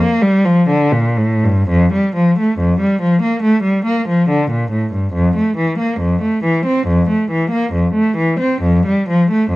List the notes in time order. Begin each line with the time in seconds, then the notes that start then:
Already playing: A#3
0.22 G3
0.45 F3
0.69 D3
0.92 A#2
1.17 A2
1.44 G2
1.69 F2
1.93 G3
2.15 F3
2.39 A3
2.59 F2
2.80 G3
3.02 F3
3.22 A#3
3.42 A3
3.63 G3
3.85 A#3
4.08 F3
4.29 D3
4.50 A#2
4.71 A2
4.93 G2
5.13 F2
5.36 A3
5.57 E3
5.78 A#3
6.00 F2
6.22 A3
6.44 E3
6.66 C4
6.87 F2
7.09 A3
7.31 E3
7.50 A#3
7.72 F2
7.94 A3
8.17 E3
8.39 C4
8.62 F2
8.86 G3
9.09 F3
9.31 A3
9.50 F2